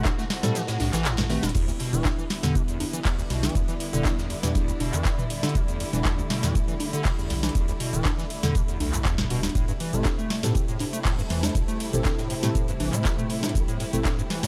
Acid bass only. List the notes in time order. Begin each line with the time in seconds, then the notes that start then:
0.05 A2
0.18 A3
0.43 G3
0.55 E3
0.68 A2
0.80 A2
0.93 E3
1.05 A2
1.18 G2
1.30 A3
1.43 G3
1.55 E2
1.68 D2
1.80 B2
1.93 E3
2.05 E2
2.18 E3
2.43 D3
2.55 B2
2.68 E2
2.80 E2
2.93 E3
3.05 E2
3.18 D2
3.30 B2
3.43 E3
3.55 E2
3.68 E3
3.93 D3
4.05 B2
4.18 E2
4.30 E2
4.43 E3
4.55 E2
4.68 D2
4.80 B2
4.93 E3
5.05 E2
5.18 E3
5.43 D3
5.55 B2
5.68 E2
5.80 E2
5.93 E3
6.05 E2
6.18 D2
6.30 B2
6.43 E3
6.55 E2
6.68 E3
6.93 D3
7.05 B2
7.18 E2
7.30 E2
7.43 E3
7.55 E2
7.68 D2
7.80 B2
7.93 E3
8.05 E2
8.18 E3
8.43 D3
8.55 B2
8.68 E2
8.80 D2
8.93 A2
9.05 E2
9.18 G2
9.30 B2
9.43 D2
9.55 A2
9.68 G2
9.80 E3
9.93 A3
10.05 A2
10.18 A3
10.43 G2
10.55 E3
10.68 A2
10.80 A2
10.93 A3
11.05 A2
11.18 G2
11.30 E3
11.43 A3
11.55 A2
11.68 A3
11.93 G2
12.05 E3
12.18 A2
12.30 A2
12.43 A3
12.55 A2
12.68 G2
12.80 E3
12.93 A3
13.05 A2
13.18 A3
13.43 G2
13.55 E3
13.68 A2
13.80 A2
13.93 A3
14.05 A2
14.18 G2
14.30 E3
14.43 A3